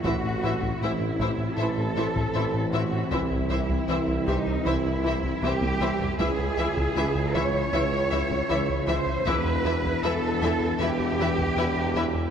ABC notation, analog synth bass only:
X:1
M:4/4
L:1/16
Q:1/4=78
K:C#m
V:1 name="Analog synth bass" clef=bass
A,, A,, A,, A,, A,, A,, A,, A,, A,, A,, A,, A,, A,, A,, A,, A,, | =C,, C,, C,, C,, C,, C,, C,, C,, C,, C,, C,, C,, C,, C,, C,, C,, | C,, C,, C,, C,, C,, C,, C,, C,, C,, C,, C,, C,, C,, C,, C,, C,, | E,, E,, E,, E,, E,, E,, E,, E,, E,, E,, E,, E,, E,, E,, E,, E,, |]